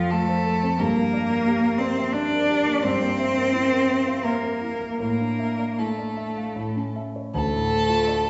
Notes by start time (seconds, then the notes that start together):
Already playing: F2 F3 C4 F4 A4 C5 F5 G5
0.11 A3 A4 F5
0.29 C5
0.46 A4
0.63 C4
0.79 G2 A#3 A#4
0.97 A#3
1.13 D5
1.30 A#4
1.47 G4
1.63 A#4
1.78 C4 C5 D5
1.97 E5
2.13 D4 D5
2.32 A#4
2.50 G4
2.67 A#3
2.83 G2 C4 C5
3.02 A#3
3.19 E5
3.36 A#4
3.53 E4
3.71 A#4
3.88 E5
4.07 F5
4.24 A#3 A#4 E5
4.43 A#4
4.62 E4
4.81 A#3
5.00 A2 A#3 A#4
5.20 D4
5.39 E5
5.58 D5
5.78 A3 E4 A4
5.98 D5
6.17 E5
6.37 F5
6.56 A2
6.76 C#4
6.96 E5
7.16 C#5
7.34 D2 A3 A4
7.53 A2
7.72 A3
7.89 F4
8.07 D5
8.25 A4